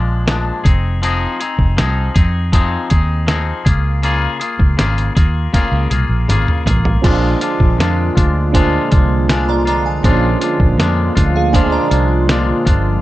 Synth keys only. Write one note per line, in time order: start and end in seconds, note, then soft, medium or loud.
7.02 7.10 C4 medium
7.02 7.99 F4 medium
7.02 8.00 G#4 medium
7.02 8.00 C5 medium
7.08 8.02 D4 medium
8.52 9.49 D4 medium
8.52 9.50 F4 medium
8.52 9.50 G#4 medium
8.52 9.51 C5 medium
10.03 10.10 C#4 medium
10.03 11.00 F4 medium
10.03 11.00 G#4 medium
10.03 11.01 C5 medium
10.10 11.03 D4 medium
11.53 12.49 D4 medium
11.53 12.50 F4 medium
11.53 12.50 G#4 medium
11.53 12.51 C5 medium